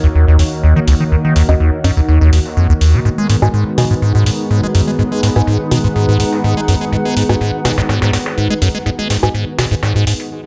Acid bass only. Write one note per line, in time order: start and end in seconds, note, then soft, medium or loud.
0.04 0.07 D#2 loud
0.15 0.26 D#2 medium
0.28 0.37 D#2 medium
0.39 0.43 D#2 medium
0.64 0.74 D#2 medium
0.76 0.80 D#3 loud
0.88 0.95 C#2 medium
1.00 1.04 D#3 medium
1.12 1.16 D#2 medium
1.25 1.34 D#3 medium
1.36 1.43 D#2 medium
1.49 1.55 D#2 loud
1.60 1.71 D#2 medium
1.84 1.91 F#2 loud
1.97 2.01 D#2 medium
2.08 2.19 D#2 medium
2.21 2.31 D#2 medium
2.33 2.40 D#2 medium
2.57 2.68 F2 medium
2.70 2.74 D#2 loud
2.81 2.95 D#2 medium
2.94 3.00 C#3 medium
3.05 3.10 G#2 medium
3.18 3.28 G#3 medium
3.30 3.37 G#2 medium
3.42 3.49 G#2 loud
3.54 3.64 G#2 medium
3.78 3.85 B2 loud
3.91 3.95 G#2 loud
4.02 4.13 G#2 medium
4.15 4.24 G#2 medium
4.26 4.31 G#2 medium
4.51 4.61 G#2 medium
4.63 4.67 G#3 medium
4.75 4.82 F#2 medium
4.88 4.91 G#3 medium
4.99 5.03 G#2 medium
5.12 5.21 G#3 medium
5.23 5.30 G#2 medium
5.36 5.42 G#2 loud
5.47 5.58 G#2 medium
5.72 5.79 B2 loud
5.84 5.88 G#2 loud
5.96 6.06 G#2 medium
6.09 6.18 G#2 medium
6.20 6.24 G#2 medium
6.44 6.55 G#2 medium
6.57 6.61 G#3 medium
6.68 6.75 F#2 medium
6.81 6.85 G#3 medium
6.92 6.97 G#2 medium
7.05 7.15 G#3 medium
7.17 7.24 G#2 medium
7.29 7.36 G#2 loud
7.41 7.51 G#2 medium
7.65 7.72 B2 loud
7.78 7.82 G#2 medium
7.89 8.00 G#2 medium
8.02 8.11 G#2 medium
8.13 8.18 G#2 medium
8.38 8.48 G#2 medium
8.50 8.54 G#3 loud
8.62 8.69 F#2 loud
8.75 8.78 G#3 medium
8.86 8.90 G#2 medium
8.99 9.08 G#3 medium
9.10 9.17 G#2 medium
9.23 9.29 G#2 loud
9.34 9.45 G#2 medium
9.59 9.66 B2 loud
9.71 9.75 G#2 loud
9.83 9.93 G#2 medium
9.96 10.05 G#2 medium
10.07 10.14 G#2 medium